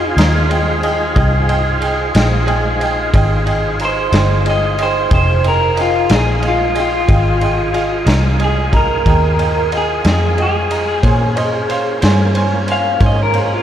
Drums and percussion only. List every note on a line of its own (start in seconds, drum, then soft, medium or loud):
0.18 snare loud
0.18 ride medium
0.51 ride medium
0.83 ride medium
1.16 kick loud
1.16 ride medium
1.49 ride medium
1.82 ride medium
2.15 snare loud
2.15 ride medium
2.48 ride soft
2.81 ride medium
3.14 kick medium
3.14 ride medium
3.47 ride medium
3.79 ride medium
4.12 snare loud
4.12 ride medium
4.46 ride medium
4.78 ride medium
5.11 kick medium
5.11 ride medium
5.44 ride medium
5.77 ride medium
6.09 snare loud
6.09 ride medium
6.43 ride medium
6.75 ride medium
7.08 kick medium
7.08 ride medium
7.41 ride medium
7.74 ride medium
8.07 snare loud
8.07 ride medium
8.40 ride medium
8.73 kick medium
8.73 ride medium
9.06 kick medium
9.06 ride medium
9.39 ride medium
9.72 ride medium
10.04 snare loud
10.04 ride medium
10.38 ride medium
10.71 ride medium
11.03 kick medium
11.03 ride medium
11.37 ride medium
11.70 ride medium
12.02 snare loud
12.02 ride medium
12.35 ride medium
12.68 ride medium
13.00 kick loud
13.00 ride medium
13.34 ride medium